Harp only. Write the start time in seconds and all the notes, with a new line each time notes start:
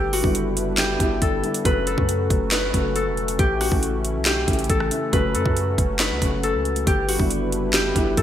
Already playing: G4 A4 B4
0.13 F#4
0.78 G4
1.22 A4
1.65 B4
1.87 A4
2.52 B4
2.96 A4
3.39 G4
3.61 F#4
4.26 G4
4.69 A4
5.13 B4
5.35 A4
6.00 B4
6.43 A4
6.87 G4
7.09 F#4
7.74 G4
8.18 A4